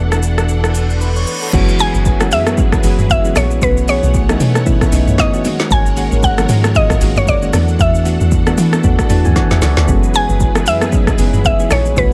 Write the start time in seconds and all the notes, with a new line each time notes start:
Already playing: E1 E3 A3 B3 D4 F#4 A4 F#5
0.12 cross-stick, shaker
0.23 shaker
0.38 cross-stick, shaker
0.49 reverse cymbal, shaker
0.64 cross-stick, shaker
0.75 shaker
0.90 shaker
1.01 B4, shaker
1.16 C#5, shaker
1.27 B4, shaker
1.42 A4, shaker
1.53 F#1 E3 F#3 G#3 B3 C#4 E4 F#4 G#4 B4, kick, crash, shaker
1.69 shaker
1.79 E3 G#3 B3 C#4 G#4 G#5, open hi-hat, shaker
1.94 F#1, shaker
2.05 kick, shaker
2.20 E3 G#3 B3 C#4 F#4, cross-stick, high conga, shaker
2.31 F#2 E5, open hi-hat, low conga, shaker
2.47 cross-stick, high conga, shaker
2.57 E3 G#3 B3 C#4 F#4, kick, low conga, shaker
2.72 kick, cross-stick, high conga, shaker
2.83 F#1 E3 G#3 B3 C#4 F#4, open hi-hat, shaker
2.99 mid tom, high conga, shaker
3.10 E5, kick, shaker
3.24 E3 G#3 B3 C#4 F#4, shaker
3.36 A#1 C#5, cross-stick, open hi-hat, high conga, low conga, shaker
3.51 shaker
3.61 B1 E3 A3 B3 C#4 F#4 B4 C#5 F#5, kick, shaker
3.77 shaker
3.88 E3 A3 B3 C#4 G#4 C#5, open hi-hat, shaker
4.03 B1, shaker
4.14 kick, shaker
4.29 E3 A3 B3 C#4 D#4, cross-stick, high conga, shaker
4.40 B2, open hi-hat, low conga, shaker
4.55 cross-stick, high conga, shaker
4.66 E3 A3 B3 C#4 E4, kick, low conga, shaker
4.81 kick, cross-stick, high conga, shaker
4.92 B1 E3 A3 B3 C#4 D#4, open hi-hat, shaker
5.07 mid tom, high conga, shaker
5.18 D#5, kick, snare, shaker
5.33 E3 A3 B3 C#4 F#4, shaker
5.44 D#3 G#3 A#3 C4 F#4 A#4 F#5, open hi-hat, high conga, low conga, shaker
5.51 C#4
5.60 snare, shaker
5.71 G#1 G#5, kick, shaker
5.86 shaker
5.96 D#3 G#3 A#3 C#4 F#4, open hi-hat, shaker
6.12 G#1, shaker
6.23 F#5, kick, shaker
6.38 D#3 F3 G#3 A#3 C#4, cross-stick, high conga, shaker
6.49 G#2, open hi-hat, low conga, shaker
6.64 cross-stick, high conga, shaker
6.75 D#3 G#3 A#3 C#4 F4 D#5, kick, low conga, shaker
6.90 kick, cross-stick, high conga, shaker
7.01 G#1 D#3 G#3 A#3 C#4 F#4, open hi-hat, shaker
7.16 C#5, mid tom, high conga, shaker
7.27 D5, kick, shaker
7.42 D#3 G#3 A#3 C#4 F#4, shaker
7.53 E2 E3 A3 B3 D4 F#4 A4, cross-stick, open hi-hat, high conga, low conga, shaker
7.68 shaker
7.79 E2 E5, kick, shaker
7.95 shaker
8.05 E3 A3 B3 D4 F#4, open hi-hat, shaker
8.21 E2, shaker
8.31 kick, low conga, shaker
8.46 E3 A3 B3 D4 F#4, cross-stick, high conga, shaker
8.58 E3, open hi-hat, low conga, shaker
8.73 cross-stick, high conga, shaker
8.84 E2 E3 A3 B3 D4 F#4, kick, low conga, shaker
8.99 kick, cross-stick, high conga, shaker
9.09 E2 E3 A3 B3 D4 F#4 A5, open hi-hat, shaker
9.25 D2 G#5, mid tom, high conga, shaker
9.36 F#5, kick, snare, shaker
9.51 E2 E5, snare, shaker
9.62 C#2 D5, snare, open hi-hat, high conga, low conga, shaker
9.77 D2 A4, snare, shaker
9.88 F#1 E3 F#3 G#3 B3 C#4 E4 F#4 G#4 B4, kick, shaker
10.03 shaker
10.14 E3 G#3 B3 C#4 F#4 G#5, open hi-hat, shaker
10.29 F#1, shaker
10.40 kick, shaker
10.55 E3 G#3 B3 C#4 G#4, cross-stick, high conga, shaker
10.66 F#2 E5, open hi-hat, low conga, shaker
10.81 cross-stick, high conga, shaker
10.92 E3 G#3 B3 C#4 D#4, kick, low conga, shaker
11.07 kick, cross-stick, high conga, shaker
11.18 F#1 E3 G#3 B3 C#4 G#4, open hi-hat, shaker
11.33 mid tom, high conga, shaker
11.45 E5, kick, shaker
11.59 E3 G#3 B3 C#4 G#4, shaker
11.71 A#1 C#5, cross-stick, open hi-hat, high conga, low conga, shaker
11.85 shaker
11.96 B1 E3 A3 B3 C#4 F#4 B4 C#5 F#5, kick, shaker